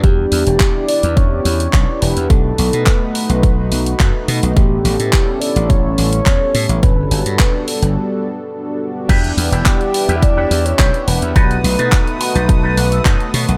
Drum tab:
CC |----------------|----------------|----------------|----------------|
HH |x-oxx-oxx-oxx-ox|x-oxx-oxx-oxx-ox|x-oxx-oxx-oxx-ox|x-oxx-ox--------|
CP |----x-------x---|----x-------x---|----x-------x---|----x-----------|
BD |o---o---o---o---|o---o---o---o---|o---o---o---o---|o---o-----------|

CC |x---------------|----------------|
HH |xxoxxxoxx-oxxxox|xxoxxxoxx-oxxxox|
CP |----x-------x---|----x-------x---|
BD |o---o---o---o---|o---o---o---o---|